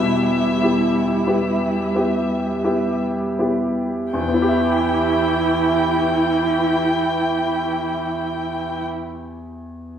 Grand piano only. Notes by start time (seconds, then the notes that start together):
Already playing: B3 E4 G4
0.00 B2
0.62 B3 E4 G4
1.27 B3 E4 G4
1.95 B3 E4 G4
2.64 B3 E4 G4
3.39 B3 E4 G4
4.13 E2
4.21 E3
4.28 B3
4.34 E4
4.42 G4
4.48 E5